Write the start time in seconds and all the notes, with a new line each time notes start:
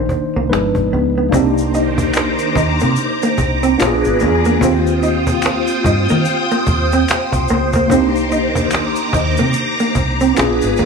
Already playing: D#3 A#3 D4 D#4 C5
0.09 muted hollow-body jazz guitar stroke, cajon bass
0.36 C2 A#3
0.50 G1 F3 G#3 B3 D4 D#4 B4, muted hollow-body jazz guitar stroke, cajon slap
0.75 G#1, cajon bass, cajon slap
0.93 C#2 B3
1.18 B3
1.29 D#3 A#3 D4 D#4 C5 A#5 D6, cajon bass
1.34 C2 C4 G4, shaker
1.58 shaker
1.74 D#4, cajon slap, shaker
1.98 cajon bass, cajon slap, shaker
2.13 finger snap, muted hollow-body jazz guitar stroke, cajon slap, shaker
2.39 shaker
2.55 D#2 D#4, cajon bass, shaker
2.80 C3 A#3, shaker
2.96 cajon slap, shaker
3.22 A#3, shaker
3.38 C2, muted hollow-body jazz guitar stroke, cajon bass, shaker
3.63 C4, shaker
3.78 A#1 B3 D4 F4 G4 G#4 B4, finger snap, muted hollow-body jazz guitar stroke, shaker
3.82 cajon slap
3.87 G#4
4.05 G#1, cajon slap, shaker
4.20 E2 A#3, cajon slap, shaker
4.45 A#3, shaker
4.59 D#2 A#3 C4 F4 C5 G5 D#6, cajon bass, shaker
4.64 G4
4.87 shaker
5.03 D#4, shaker
5.27 cajon bass, cajon slap, shaker
5.42 finger snap, muted hollow-body jazz guitar stroke, cajon slap, shaker
5.67 shaker
5.84 G2 D#4, cajon bass, shaker
6.09 D#3 A#3, shaker
6.25 cajon slap, shaker
6.51 A#3, shaker
6.67 D#2, muted hollow-body jazz guitar stroke, cajon bass, shaker
6.92 C4, shaker
7.08 finger snap, muted hollow-body jazz guitar stroke, cajon slap, shaker
7.32 C2, cajon bass, cajon slap, shaker
7.48 C#2 A#3, cajon slap, shaker
7.73 A#3, cajon bass, shaker
7.88 C2 D#3 A#3 C4 D4 D#4 A#5 D6, cajon bass, shaker
7.94 G4
8.16 shaker
8.32 D#4, cajon slap, shaker
8.55 cajon bass, cajon slap, shaker
8.71 finger snap, muted hollow-body jazz guitar stroke, cajon slap, shaker
8.96 shaker
9.13 D#2 D#4, cajon bass, shaker
9.37 C3 A#3, shaker
9.53 cajon slap, shaker
9.79 A#3, shaker
9.95 C2, muted hollow-body jazz guitar stroke, cajon bass, shaker
10.21 C4, shaker
10.35 A#1 B3 C#4 F4 G#4 B4 D6, finger snap, muted hollow-body jazz guitar stroke, shaker
10.39 D4, cajon slap
10.61 G#1, cajon slap, shaker
10.77 E2 A#3, cajon slap, shaker